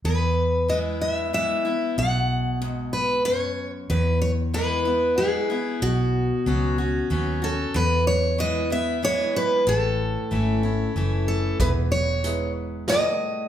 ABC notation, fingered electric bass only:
X:1
M:3/4
L:1/8
Q:1/4=94
K:E
V:1 name="Fingered electric bass" clef=bass
E,,6 | B,,,6 | E,,6 | B,,,2 C,,2 D,,2 |
E,,6 | A,,,2 G,,,2 F,,,2 | E,,,6 |]